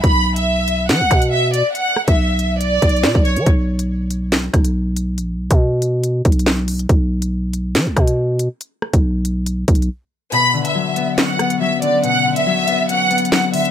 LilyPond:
<<
  \new Staff \with { instrumentName = "Violin section" } { \time 4/4 \key b \minor \tempo 4 = 140 b''8. e''4~ e''16 fis''4 e''8 d''8 | fis''8. e''4~ e''16 d''4. cis''8 | r1 | r1 |
r1 | r1 | b''8. e''4~ e''16 fis''4 e''8 d''8 | fis''8. e''4~ e''16 fis''4 fis''8 e''8 | }
  \new Staff \with { instrumentName = "Harp" } { \clef bass \time 4/4 \key b \minor r1 | r1 | r1 | r1 |
r1 | r1 | b,8 d8 fis8 b8 cis'8 b8 fis8 d8 | b,8 d8 fis8 b8 cis'8 b8 fis8 d8 | }
  \new Staff \with { instrumentName = "808-style bass" } { \clef bass \time 4/4 \key b \minor b,,2 fis16 b,,16 b,4~ b,16 r16 | r8. b,,4.~ b,,16 b,,8 b,16 b,,8 fis16 | b,,2~ b,,8 b,,4. | ais,,16. b,,16. b,4.~ b,16 b,,4. |
b,,2 fis16 b,,16 b,4~ b,16 r16 | r8. b,,4.~ b,,16 b,,8 r4 | r1 | r1 | }
  \new DrumStaff \with { instrumentName = "Drums" } \drummode { \time 4/4 <hh bd>8. hh16 r8 hh8 <hc hh sn>8 <hh bd ss>16 hh16 r8 hh8 | hh8 ss16 <hh bd>16 r8 hh8 \tuplet 3/2 { hh16 r16 r16 <hh bd>16 hh16 hh16 } <hc sn>16 bd16 hh16 hh16 | <hh bd>8. hh16 r8 hh8 <hc hh sn>8 <hh bd ss>16 hh16 r8 hh8 | hh8. <hh bd>16 r8 hh8 \tuplet 3/2 { hh16 r16 r16 <hh bd>16 hh16 hh16 } <hc sn>8 <hh hho>16 hh16 |
<hh bd>8. hh16 r8 hh8 <hc hh sn>8 <hh bd ss>16 hh16 r8 hh8 | hh8 ss16 <hh bd>16 r8 hh8 \tuplet 3/2 { hh16 r16 r16 <hh bd>16 hh16 hh16 } r4 | hh8. hh16 r8 hh8 <hc hh sn>8 <hh ss>16 hh16 r8 hh8 | hh8. hh16 r8 hh8 \tuplet 3/2 { hh16 r16 r16 hh16 hh16 hh16 } <hc sn>8 <hh hho>16 hh16 | }
>>